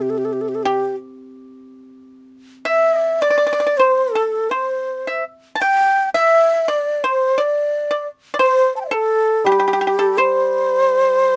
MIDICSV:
0, 0, Header, 1, 4, 480
1, 0, Start_track
1, 0, Tempo, 738007
1, 42, Time_signature, 4, 2, 24, 8
1, 3403, Tempo, 703400
1, 6283, Tempo, 723764
1, 7549, End_track
2, 0, Start_track
2, 0, Title_t, "Pipa"
2, 0, Program_c, 0, 105
2, 425, Note_on_c, 0, 67, 73
2, 613, Note_off_c, 0, 67, 0
2, 1725, Note_on_c, 0, 76, 76
2, 1946, Note_off_c, 0, 76, 0
2, 1946, Note_on_c, 0, 74, 76
2, 2067, Note_off_c, 0, 74, 0
2, 2094, Note_on_c, 0, 74, 75
2, 2140, Note_off_c, 0, 74, 0
2, 2149, Note_on_c, 0, 74, 54
2, 2188, Note_off_c, 0, 74, 0
2, 2196, Note_on_c, 0, 74, 63
2, 2240, Note_off_c, 0, 74, 0
2, 2254, Note_on_c, 0, 74, 55
2, 2286, Note_off_c, 0, 74, 0
2, 2294, Note_on_c, 0, 74, 59
2, 2333, Note_off_c, 0, 74, 0
2, 2341, Note_on_c, 0, 74, 55
2, 2376, Note_off_c, 0, 74, 0
2, 2384, Note_on_c, 0, 74, 59
2, 2431, Note_off_c, 0, 74, 0
2, 2468, Note_on_c, 0, 72, 66
2, 2684, Note_off_c, 0, 72, 0
2, 2701, Note_on_c, 0, 69, 62
2, 2919, Note_off_c, 0, 69, 0
2, 2934, Note_on_c, 0, 72, 61
2, 3262, Note_off_c, 0, 72, 0
2, 3299, Note_on_c, 0, 76, 65
2, 3403, Note_off_c, 0, 76, 0
2, 3623, Note_on_c, 0, 81, 66
2, 3659, Note_off_c, 0, 81, 0
2, 3664, Note_on_c, 0, 79, 80
2, 3994, Note_off_c, 0, 79, 0
2, 4025, Note_on_c, 0, 76, 75
2, 4355, Note_off_c, 0, 76, 0
2, 4392, Note_on_c, 0, 74, 68
2, 4608, Note_off_c, 0, 74, 0
2, 4636, Note_on_c, 0, 72, 66
2, 4850, Note_off_c, 0, 72, 0
2, 4867, Note_on_c, 0, 74, 66
2, 5195, Note_off_c, 0, 74, 0
2, 5228, Note_on_c, 0, 74, 63
2, 5332, Note_off_c, 0, 74, 0
2, 5523, Note_on_c, 0, 74, 67
2, 5557, Note_off_c, 0, 74, 0
2, 5560, Note_on_c, 0, 72, 82
2, 5895, Note_off_c, 0, 72, 0
2, 5914, Note_on_c, 0, 69, 76
2, 6253, Note_off_c, 0, 69, 0
2, 6290, Note_on_c, 0, 67, 68
2, 6318, Note_off_c, 0, 67, 0
2, 6326, Note_on_c, 0, 67, 50
2, 6370, Note_off_c, 0, 67, 0
2, 6378, Note_on_c, 0, 67, 56
2, 6423, Note_off_c, 0, 67, 0
2, 6431, Note_on_c, 0, 67, 50
2, 6460, Note_off_c, 0, 67, 0
2, 6468, Note_on_c, 0, 67, 54
2, 6512, Note_off_c, 0, 67, 0
2, 6520, Note_on_c, 0, 67, 52
2, 6552, Note_off_c, 0, 67, 0
2, 6560, Note_on_c, 0, 67, 58
2, 6610, Note_off_c, 0, 67, 0
2, 6638, Note_on_c, 0, 69, 64
2, 6751, Note_off_c, 0, 69, 0
2, 6766, Note_on_c, 0, 72, 66
2, 7549, Note_off_c, 0, 72, 0
2, 7549, End_track
3, 0, Start_track
3, 0, Title_t, "Xiao"
3, 0, Program_c, 1, 77
3, 12, Note_on_c, 1, 67, 55
3, 64, Note_on_c, 1, 69, 59
3, 74, Note_off_c, 1, 67, 0
3, 116, Note_on_c, 1, 67, 55
3, 126, Note_off_c, 1, 69, 0
3, 162, Note_on_c, 1, 69, 59
3, 172, Note_off_c, 1, 67, 0
3, 214, Note_on_c, 1, 67, 58
3, 223, Note_off_c, 1, 69, 0
3, 268, Note_on_c, 1, 69, 56
3, 278, Note_off_c, 1, 67, 0
3, 315, Note_on_c, 1, 67, 55
3, 325, Note_off_c, 1, 69, 0
3, 357, Note_on_c, 1, 69, 58
3, 367, Note_off_c, 1, 67, 0
3, 411, Note_on_c, 1, 67, 69
3, 420, Note_off_c, 1, 69, 0
3, 620, Note_off_c, 1, 67, 0
3, 1746, Note_on_c, 1, 76, 93
3, 2091, Note_on_c, 1, 74, 88
3, 2101, Note_off_c, 1, 76, 0
3, 2454, Note_on_c, 1, 72, 80
3, 2464, Note_off_c, 1, 74, 0
3, 2683, Note_on_c, 1, 69, 75
3, 2693, Note_off_c, 1, 72, 0
3, 2927, Note_on_c, 1, 72, 77
3, 2937, Note_off_c, 1, 69, 0
3, 3401, Note_off_c, 1, 72, 0
3, 3658, Note_on_c, 1, 79, 104
3, 3991, Note_off_c, 1, 79, 0
3, 4031, Note_on_c, 1, 76, 93
3, 4396, Note_on_c, 1, 74, 80
3, 4406, Note_off_c, 1, 76, 0
3, 4639, Note_on_c, 1, 72, 80
3, 4649, Note_off_c, 1, 74, 0
3, 4890, Note_on_c, 1, 74, 82
3, 4900, Note_off_c, 1, 72, 0
3, 5350, Note_off_c, 1, 74, 0
3, 5584, Note_on_c, 1, 72, 105
3, 5809, Note_off_c, 1, 72, 0
3, 5813, Note_on_c, 1, 81, 43
3, 5839, Note_off_c, 1, 81, 0
3, 5843, Note_on_c, 1, 79, 49
3, 5868, Note_off_c, 1, 79, 0
3, 5872, Note_on_c, 1, 76, 53
3, 5885, Note_on_c, 1, 74, 57
3, 5886, Note_off_c, 1, 76, 0
3, 5903, Note_off_c, 1, 74, 0
3, 5907, Note_on_c, 1, 72, 63
3, 5922, Note_on_c, 1, 69, 95
3, 5932, Note_off_c, 1, 72, 0
3, 6284, Note_on_c, 1, 67, 80
3, 6294, Note_off_c, 1, 69, 0
3, 6765, Note_on_c, 1, 72, 96
3, 6775, Note_off_c, 1, 67, 0
3, 7549, Note_off_c, 1, 72, 0
3, 7549, End_track
4, 0, Start_track
4, 0, Title_t, "Hammered dulcimer"
4, 0, Program_c, 2, 15
4, 0, Note_on_c, 2, 48, 64
4, 512, Note_off_c, 2, 48, 0
4, 6277, Note_on_c, 2, 55, 60
4, 7549, Note_off_c, 2, 55, 0
4, 7549, End_track
0, 0, End_of_file